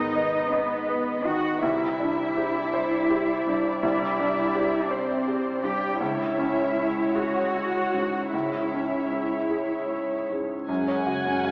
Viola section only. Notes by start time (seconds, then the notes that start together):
Already playing: B3 D#5
1.62 G3 D5
6.01 G#3 C#5
8.33 G#3 C#5